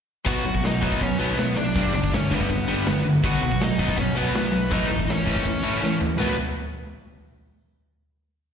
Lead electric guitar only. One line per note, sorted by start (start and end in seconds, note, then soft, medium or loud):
0.27 0.62 F#4 medium
0.27 0.65 F#5 loud
0.65 0.99 D#4 medium
0.65 1.03 D#5 medium
1.01 1.18 C#4 medium
1.01 1.19 C#5 medium
1.19 1.54 B3 medium
1.19 1.57 B4 medium
1.57 1.91 D4 medium
1.57 1.94 D5 medium
1.94 2.11 D4 medium
1.94 2.13 D5 medium
2.14 2.30 C#4 medium
2.14 2.34 C#5 medium
2.33 3.02 B3 medium
2.33 3.07 B4 medium
3.25 3.59 F#4 medium
3.25 3.63 F#5 loud
3.62 3.96 D#4 medium
3.62 3.96 D#5 medium
3.99 4.15 C#4 medium
3.99 4.18 C#5 medium
4.17 4.34 B3 medium
4.17 4.35 B4 medium
4.35 4.69 B3 medium
4.35 4.70 B4 medium
4.73 5.06 D#4 medium
4.73 5.10 D#5 medium
5.10 5.97 C#4 medium
5.10 5.98 C#5 medium
6.18 6.36 B4 medium